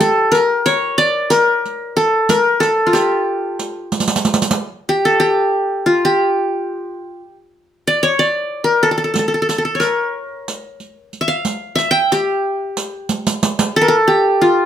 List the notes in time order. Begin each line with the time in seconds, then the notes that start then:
Already playing: G4
0.00 A4, riq
0.32 A#4, riq
0.66 C#5, riq
0.98 D5
1.30 A#4, riq
1.65 riq
1.97 A4, riq
2.29 A#4, riq
2.60 A4, riq
2.87 F4
2.93 G4, riq
3.59 riq
3.92 riq
4.00 riq
4.08 riq
4.16 riq
4.25 riq
4.34 riq
4.42 riq
4.51 riq
4.89 G4
5.05 A4
5.20 G4
5.86 F4
6.05 G4
7.87 D5
8.03 C#5
8.19 D5
8.64 A#4
8.83 A4
8.91 A4
8.98 A4
9.04 A4
9.14 A4, riq
9.19 A4
9.28 A4
9.34 A4
9.42 A4
9.49 A4, riq
9.58 A4
9.65 A4
9.75 C#5
9.80 A#4, riq
10.48 riq
10.80 riq
11.13 riq
11.21 E5
11.28 F5
11.45 riq
11.76 E5, riq
11.91 G5
12.12 G4, riq
12.77 riq
13.09 riq
13.27 riq
13.43 riq
13.59 riq
13.76 A4
13.81 A#4
13.88 A4
14.08 G4
14.41 F4